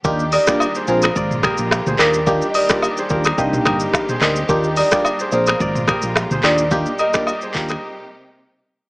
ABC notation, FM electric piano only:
X:1
M:4/4
L:1/16
Q:"Swing 16ths" 1/4=108
K:Eb
V:1 name="FM electric piano"
[B,DFG] z2 [B,DFG] z2 [CDFA] z6 z [B,DFG] z | [B,DFG] z2 [B,DFG] z2 [B,DFG] z [B,DEG]6 [B,DEG] z | [B,DFG] z2 [B,DFG] z2 [CDFA] z6 z [B,DFG] z | [B,DFG] z2 [B,DFG] z2 [B,DFG] z8 z |]